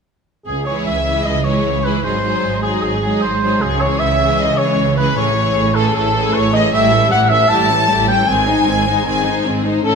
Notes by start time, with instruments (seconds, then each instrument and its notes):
0.46 cello section C#2, double bass section C#2, oboe G#4, violin section G#4
0.66 viola section E3 G#3, violin section E4 G#4 C#5, oboe C#5
0.86 cello section C#2, double bass section C#2, oboe E5, violin section E5
1.06 viola section E3 G#3, violin section E4 G#4
1.25 double bass section C#2, cello section C#2, oboe D#5, violin section D#5
1.44 viola section E3 G#3, violin section E4 G#4 C#5, oboe C#5
1.65 double bass section C#2, cello section C#2
1.84 viola section E3 G#3, violin section E4 G#4 B4, oboe B4
2.04 double bass section G#1, cello section G#2, viola section F#3 G#3, violin section D#4 G#4 C5, oboe C5
2.24 viola section F#3 G#3, violin section D#4 G#4
2.44 double bass section G#1, cello section G#2
2.62 viola section F#3 G#3, violin section D#4 G#4, oboe G#4
2.82 double bass section G#1, cello section G#2, oboe G#4, violin section G#4
3.03 viola section F#3 G#3, violin section D#4 G#4
3.21 double bass section G#1, cello section G#2, oboe C5, violin section C5
3.42 viola section F#3 G#3, violin section D#4 G#4
3.61 double bass section C#2, cello section C#3, violin section G#4, oboe G#4
3.80 viola section E3 G#3, violin section C#4 G#4 C#5, oboe C#5
3.99 double bass section C#2, cello section C#3, oboe E5, violin section E5
4.20 viola section E3 G#3, violin section C#4 G#4
4.39 double bass section C#2, cello section C#3, oboe D#5, violin section D#5
4.57 viola section E3 G#3, violin section C#4 G#4 C#5, oboe C#5
4.78 double bass section C#2, cello section C#3
4.97 viola section E3 G#3, violin section C#4 G#4 B4, oboe B4
5.16 double bass section A1, cello section A2, viola section E3 A3, violin section C#4 G#4 C#5, oboe C#5
5.35 viola section E3 A3, violin section C#4 G#4
5.56 double bass section A1, cello section A2
5.75 viola section E3 A3, violin section C#4 G#4 A4, oboe A4
5.94 double bass section A1, cello section A2, oboe A4, violin section A4
6.14 viola section E3 A3, violin section C#4 G#4
6.33 double bass section A1, cello section A2, oboe C#5, violin section C#5
6.53 viola section E3 A3, violin section C#4 G#4 D#5, oboe D#5
6.73 double bass section A1, cello section A2, viola section G3 A3, violin section E4 G4 E5, oboe E5
6.91 viola section E3 G3, violin section C#4 A4
7.10 double bass section A1, cello section A2, viola section G3 A3, violin section E4 G4 F#5, oboe F#5
7.29 viola section E3 G3, violin section C#4 A4 E5, oboe E5
7.48 double bass section A1, cello section A2, viola section G3 A3, violin section E4 G4 A5, oboe A5
7.69 viola section E3 G3, violin section C#4 A4
7.88 double bass section A1, cello section A2, viola section G3 A3, violin section E4 G4
8.08 viola section E3 G3, violin section C#4 A4 G5, oboe G5
8.27 double bass section G#1, cello section G#2, viola section D#3 C4, violin section C4 G#4 G#5, oboe G#5
8.48 viola section G#3 D#4, violin section D#4 C5
8.67 double bass section G#1, cello section G#2, viola section D#3 C4, violin section C4 G#4
8.87 viola section G#3 D#4, violin section D#4 C5
9.05 double bass section G#1, cello section G#2, viola section D#3 C4, violin section C4 G#4 G#5, oboe G#5
9.24 viola section G#3 D#4, violin section D#4 C5
9.45 double bass section G#1, cello section G#2, viola section D#3 C4, violin section C4 G#4
9.64 viola section G#3 D#4, violin section D#4 C5
9.84 double bass section A1, cello section A2, viola section A3 C#4, violin section C#4 E4 A4, oboe A4